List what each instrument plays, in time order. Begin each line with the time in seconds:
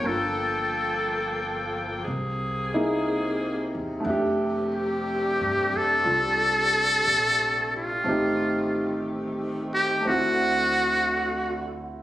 Already playing: saxophone section G5
0.00 upright bass G1, grand piano A#3 D4
0.05 saxophone section F3 A#3 A4, grand piano F4, muted trumpet A4
0.10 grand piano A4
2.04 upright bass C2, saxophone section C3 A#3 C4 G#4
2.74 grand piano A#3 D#4 E4 G#4
3.75 upright bass E2
4.00 grand piano A3 D4
4.04 upright bass F2, saxophone section A3 D4 G4, grand piano E5
4.10 grand piano G4
4.75 muted trumpet G4
5.40 upright bass G2
5.72 upright bass F#2
5.77 muted trumpet A4
6.04 upright bass C2, grand piano F4 A4
7.06 upright bass A#1
7.77 muted trumpet F4
8.04 upright bass A1, saxophone section D#3 A3 C4, grand piano A3 C4 D#4
8.09 grand piano G4
9.74 muted trumpet G4
10.01 grand piano A3
10.05 upright bass D2, saxophone section D3 F#4, grand piano C4 E4, muted trumpet F#4
10.12 grand piano F#4